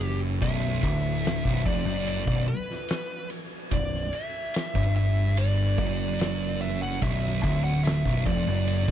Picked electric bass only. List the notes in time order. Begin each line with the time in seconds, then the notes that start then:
Already playing: F#1
0.42 B0
0.83 D1
1.45 B0
1.65 F1
1.85 F#1
2.27 B0
3.71 B0
4.75 G1
5.78 F#1
7.02 B0
7.43 D1
8.05 B0
8.26 F1
8.47 F#1
8.88 B0